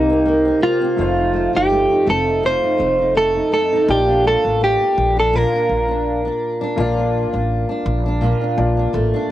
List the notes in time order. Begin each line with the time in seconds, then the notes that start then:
Already playing: C2 C3 D#3 A#3 D#4 G4 C5
0.10 C4
0.25 A#3
0.45 C4
0.61 A#3 F4
0.81 C4
0.96 F1 F2 A3 D#4 F4
1.01 C5
1.18 D#4
1.33 A3
1.53 G1 D#4 G4
1.70 A3
1.89 D#4
2.06 F1 A3 A4
2.26 D#4
2.43 F2 F4 C5
2.63 D#4
2.78 F1 A3
2.99 D#4
3.15 A3 A4
3.35 D#4
3.52 A3 A4
3.73 D#4
3.87 A#1 A#3 F4 G4 A5
3.91 D5
4.08 D4
4.24 A3 A4
4.44 A1 D4
4.61 A3 G4
4.81 D4
4.98 A#1
5.17 D4 A4
5.33 A#2 F4 A#4
5.53 D4
5.69 A#1
5.88 D4
6.25 D4
6.61 D4
6.76 A#1 A#3 F4 A5
6.80 D5
6.97 D4
7.33 A1 D4
7.69 D4
7.86 A#1
8.06 D4
8.21 A#2 F4
8.41 D4
8.56 A#1 A#3 F4 D5 A5
8.77 D4
8.93 A1 A3
9.14 D4